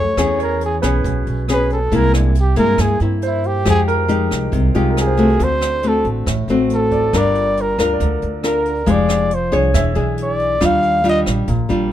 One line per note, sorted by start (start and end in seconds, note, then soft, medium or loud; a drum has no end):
0.00 0.15 F2 medium
0.00 0.16 F#2 medium
0.00 0.38 C#5 medium
0.17 0.79 E2 loud
0.17 1.02 E3 medium
0.17 0.79 B3 soft
0.17 0.80 C#4 medium
0.17 0.80 G#4 medium
0.17 kick medium
0.17 cross-stick medium
0.17 closed hi-hat soft
0.39 0.61 A#4 medium
0.39 1.60 C#5 medium
0.39 closed hi-hat soft
0.61 closed hi-hat soft
0.66 0.78 G#4 medium
0.82 1.03 B1 medium
0.82 1.45 B3 medium
0.82 1.45 C#4 medium
0.82 1.45 G#4 medium
0.82 2.04 B4 soft
0.82 cross-stick medium
0.82 closed hi-hat soft
1.04 1.25 B1 medium
1.04 1.90 B2 medium
1.04 kick medium
1.04 closed hi-hat soft
1.27 1.88 B1 medium
1.27 closed hi-hat soft
1.48 1.76 B3 medium
1.48 1.77 C#4 medium
1.48 1.77 G#4 medium
1.48 1.70 B4 medium
1.48 cross-stick medium
1.48 closed hi-hat soft
1.70 1.97 A4 medium
1.70 closed hi-hat soft
1.92 2.53 C2 loud
1.92 2.77 C3 medium
1.92 2.35 G#3 medium
1.92 2.35 A#3 medium
1.92 2.35 E4 medium
1.92 kick medium
1.92 closed hi-hat soft
1.96 2.15 A#4 loud
2.14 2.31 D4 medium
2.14 cross-stick medium
2.14 closed hi-hat soft
2.35 closed hi-hat soft
2.40 2.58 G4 medium
2.56 2.77 G2 medium
2.56 2.97 G#3 medium
2.56 2.97 A#3 medium
2.56 2.97 E4 medium
2.56 2.83 A#4 loud
2.56 closed hi-hat soft
2.78 2.99 G2 medium
2.78 3.02 G#4 medium
2.78 kick medium
2.78 cross-stick medium
2.78 closed hi-hat soft
3.00 3.62 G2 medium
3.00 3.63 A#3 medium
3.00 3.19 C4 soft
3.00 3.63 E4 medium
3.00 closed hi-hat soft
3.22 3.84 C5 soft
3.22 closed hi-hat soft
3.26 3.48 E4 medium
3.44 3.67 G4 medium
3.44 closed hi-hat soft
3.65 4.27 F2 loud
3.65 4.50 F3 medium
3.65 4.06 G#3 medium
3.65 4.06 D#4 medium
3.65 4.06 G4 medium
3.65 kick medium
3.65 cross-stick medium
3.65 closed hi-hat soft
3.70 3.81 G#4 medium
3.88 4.89 A#4 medium
3.88 closed hi-hat soft
4.08 4.71 G#3 medium
4.08 4.71 D#4 medium
4.08 4.71 G4 medium
4.08 closed hi-hat soft
4.31 4.52 C2 medium
4.31 cross-stick medium
4.31 closed hi-hat soft
4.52 4.73 C2 medium
4.52 5.37 C3 medium
4.52 kick medium
4.52 closed hi-hat soft
4.74 5.36 C2 medium
4.74 5.15 G#3 medium
4.74 5.15 D#4 medium
4.74 5.36 F4 soft
4.74 5.15 G4 medium
4.74 closed hi-hat soft
4.90 5.38 A#4 soft
4.97 5.45 G#4 medium
4.97 cross-stick medium
4.97 closed hi-hat soft
5.07 5.84 C5 soft
5.17 5.80 A3 medium
5.17 5.80 C4 medium
5.17 5.80 F#4 medium
5.17 closed hi-hat soft
5.39 6.01 D2 loud
5.39 6.24 D3 medium
5.39 5.89 C5 loud
5.39 kick medium
5.39 closed hi-hat soft
5.61 cross-stick medium
5.61 closed hi-hat soft
5.83 6.27 A3 medium
5.83 6.27 C4 medium
5.83 6.27 F#4 medium
5.83 closed hi-hat soft
5.88 6.07 A4 medium
6.05 6.25 A1 medium
6.05 closed hi-hat soft
6.26 6.47 A1 loud
6.26 7.12 A2 medium
6.26 kick medium
6.26 cross-stick medium
6.26 closed hi-hat soft
6.48 7.09 A1 medium
6.48 7.11 A3 medium
6.48 7.11 C4 medium
6.48 7.11 F#4 medium
6.48 closed hi-hat soft
6.70 closed hi-hat soft
6.74 7.19 A4 medium
6.91 7.32 D5 soft
6.91 kick soft
6.91 closed hi-hat soft
7.13 7.75 G1 loud
7.13 7.98 G3 medium
7.13 7.75 D4 medium
7.13 7.76 F4 medium
7.13 7.76 A#4 medium
7.13 kick medium
7.13 cross-stick medium
7.13 closed hi-hat soft
7.18 7.63 D5 medium
7.35 closed hi-hat soft
7.57 closed hi-hat soft
7.61 7.81 A#4 medium
7.78 7.99 D2 medium
7.78 8.40 D4 medium
7.78 8.41 F4 medium
7.78 9.00 A#4 soft
7.78 8.41 A#4 medium
7.78 cross-stick medium
7.78 closed hi-hat soft
7.94 9.13 D5 soft
8.00 8.21 D2 loud
8.00 8.86 D3 medium
8.00 kick medium
8.00 closed hi-hat soft
8.22 8.84 D2 medium
8.22 closed hi-hat soft
8.43 8.72 D4 soft
8.43 8.72 F4 soft
8.43 8.72 A#4 medium
8.43 8.92 A#4 medium
8.43 cross-stick medium
8.43 closed hi-hat soft
8.65 closed hi-hat soft
8.86 9.48 F1 medium
8.86 9.72 F3 medium
8.86 9.30 G#3 medium
8.86 9.31 D#4 medium
8.86 9.31 G4 medium
8.86 kick medium
8.86 closed hi-hat soft
8.91 9.36 D5 medium
9.09 cross-stick medium
9.09 closed hi-hat soft
9.31 9.54 C5 medium
9.31 closed hi-hat soft
9.52 9.73 C2 medium
9.52 9.92 D4 medium
9.52 9.93 G#4 medium
9.52 9.93 C#5 medium
9.52 closed hi-hat soft
9.74 9.95 E1 medium
9.74 10.59 E3 medium
9.74 10.58 E5 medium
9.74 kick medium
9.74 cross-stick medium
9.74 closed hi-hat soft
9.95 10.57 B1 medium
9.95 10.58 D4 medium
9.95 10.58 G#4 medium
9.95 closed hi-hat soft
10.17 closed hi-hat soft
10.22 10.67 D5 medium
10.39 closed hi-hat soft
10.61 11.23 D#2 medium
10.61 11.46 D#3 medium
10.61 11.01 G3 medium
10.61 11.01 D4 medium
10.61 11.02 F4 medium
10.61 kick medium
10.61 cross-stick medium
10.61 closed hi-hat soft
10.65 11.07 F5 loud
10.83 closed hi-hat soft
11.04 11.48 G3 medium
11.04 11.48 D4 medium
11.04 11.48 F4 medium
11.04 closed hi-hat soft
11.09 11.21 D#5 medium
11.26 11.47 A#1 medium
11.26 cross-stick medium
11.26 closed hi-hat soft
11.47 11.68 A#1 loud
11.47 11.92 A#2 medium
11.47 kick medium
11.47 closed hi-hat soft
11.69 11.92 A#1 medium
11.69 11.92 G3 medium
11.69 11.92 D4 medium
11.69 11.92 F4 medium
11.69 closed hi-hat soft